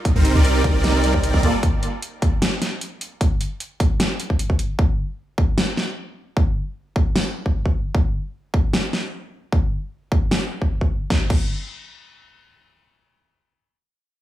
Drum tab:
CC |----------------|----------------|----------------|----------------|
HH |x-x-x-x-x-x-x-x-|x-x-x-x-x-x-x-x-|x-x-x-x-x-x-x-x-|----------------|
SD |--------o-------|--------o-o-----|--------o-------|--------o-o-----|
BD |o-----o----o-o--|o-----o---------|o-----o----o-o--|o-----o---------|

CC |----------------|----------------|----------------|--x-------------|
HH |----------------|----------------|----------------|----------------|
SD |--------o-------|--------o-o-----|--------o-------|o---------------|
BD |o-----o----o-o--|o-----o---------|o-----o----o-o--|o-o-------------|

CC |----------------|
HH |----------------|
SD |----------------|
BD |----------------|